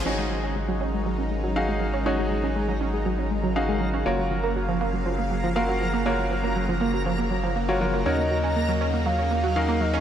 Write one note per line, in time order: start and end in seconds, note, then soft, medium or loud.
0.06 4.03 G#1 medium
0.06 10.00 C#3 medium
0.06 10.00 F#3 medium
0.06 4.02 G#3 medium
0.06 0.14 C#4 loud
0.06 4.02 D#4 medium
0.06 1.53 D#4 medium
0.06 1.53 F#4 medium
0.06 1.53 G#4 medium
0.06 10.00 A#4 medium
0.06 1.53 C#5 medium
0.06 10.00 A#5 medium
0.18 0.30 G#3 medium
0.31 0.39 F#3 medium
0.44 0.51 C#4 medium
0.56 0.64 G#3 medium
0.68 0.73 F#3 loud
0.81 0.86 C#4 loud
0.94 1.05 G#3 medium
1.06 1.14 F#3 medium
1.19 1.30 C#4 medium
1.31 1.39 G#3 medium
1.44 1.55 F#3 loud
1.56 1.61 C#4 medium
1.56 2.03 D#4 medium
1.56 2.03 F#4 medium
1.56 2.03 G#4 medium
1.56 2.03 F5 medium
1.69 1.73 G#3 loud
1.81 1.86 F#3 medium
1.94 2.01 C#4 loud
2.06 2.14 C#4 medium
2.06 3.53 D#4 medium
2.06 3.53 F#4 medium
2.06 3.53 G#4 medium
2.06 3.53 C#5 medium
2.19 2.30 G#3 medium
2.31 2.39 F#3 medium
2.44 2.51 C#4 medium
2.56 2.64 G#3 medium
2.69 2.73 F#3 loud
2.81 2.86 C#4 loud
2.94 3.05 G#3 medium
3.06 3.14 F#3 medium
3.19 3.30 C#4 medium
3.31 3.39 G#3 medium
3.44 3.55 F#3 medium
3.56 3.61 C#4 medium
3.56 4.03 D#4 medium
3.56 4.03 F#4 medium
3.56 4.03 G#4 medium
3.56 4.03 F5 medium
3.69 3.73 G#3 loud
3.81 3.86 F#3 medium
3.94 4.01 C#4 medium
4.06 8.03 F#1 medium
4.06 4.14 A#3 medium
4.06 10.00 A#3 medium
4.06 5.53 F4 medium
4.06 5.53 F#4 medium
4.06 5.53 A#4 medium
4.06 5.53 C#5 medium
4.06 8.02 F5 medium
4.19 4.30 F#3 medium
4.31 4.39 F3 medium
4.44 4.51 A#3 loud
4.56 4.64 F#3 medium
4.69 4.73 F3 loud
4.81 4.86 A#3 loud
4.94 5.05 F#3 medium
5.06 5.14 F3 medium
5.19 5.30 A#3 medium
5.31 5.39 F#3 medium
5.44 5.55 F3 loud
5.56 5.61 A#3 medium
5.56 6.03 F4 medium
5.56 6.03 F#4 medium
5.56 6.03 A#4 medium
5.56 6.03 F5 medium
5.69 5.73 F#3 medium
5.81 5.86 F3 medium
5.94 6.01 A#3 medium
6.06 6.14 A#3 loud
6.06 7.53 F4 medium
6.06 7.53 F#4 medium
6.06 7.53 A#4 medium
6.06 7.53 C#5 medium
6.19 6.30 F#3 medium
6.31 6.39 F3 medium
6.44 6.51 A#3 medium
6.56 6.64 F#3 medium
6.69 6.73 F3 medium
6.81 6.86 A#3 loud
6.94 7.05 F#3 medium
7.06 7.14 F3 loud
7.19 7.30 A#3 medium
7.31 7.39 F#3 medium
7.44 7.55 F3 loud
7.56 7.61 A#3 medium
7.69 7.73 F#3 loud
7.69 7.78 F4 medium
7.69 7.78 F#4 medium
7.69 7.78 A#4 medium
7.69 7.78 C#5 medium
7.81 7.86 F3 medium
7.81 8.03 F4 medium
7.81 8.03 F#4 medium
7.81 8.03 A#4 medium
7.81 8.03 C#5 medium
7.94 8.01 A#3 medium
8.06 10.00 D#2 medium
8.06 8.14 C#4 medium
8.06 9.53 D#4 medium
8.06 10.00 D#4 medium
8.06 9.53 F#4 medium
8.06 9.53 A#4 medium
8.06 9.53 C#5 medium
8.06 8.96 D#5 loud
8.19 8.30 A#3 medium
8.31 8.39 F#3 medium
8.44 8.51 C#4 loud
8.56 8.64 A#3 medium
8.69 8.73 F#3 loud
8.81 8.86 C#4 loud
8.94 9.05 A#3 medium
9.06 9.14 F#3 medium
9.06 9.82 F5 medium
9.19 9.30 C#4 medium
9.31 9.39 A#3 medium
9.44 9.55 F#3 loud
9.56 9.61 C#4 medium
9.56 10.00 D#4 medium
9.56 10.00 F#4 medium
9.56 10.00 A#4 medium
9.56 10.00 F5 medium
9.69 9.73 A#3 medium
9.81 9.86 F#3 medium
9.81 10.00 D#5 loud
9.94 10.00 C#4 loud